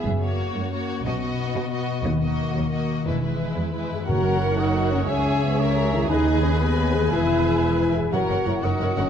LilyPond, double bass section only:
\new Staff \with { instrumentName = "Double bass section" } { \clef bass \time 6/8 \key fis \mixolydian \tempo 4. = 119 fis,,4 r2 | b,,4 r2 | dis,4 r2 | e,,4 r2 |
fis,,2. | cis,2. | dis,2. | e,,2~ e,,8 r8 |
fis,,8 fis,,8 fis,,8 fis,,8 fis,,8 fis,,8 | }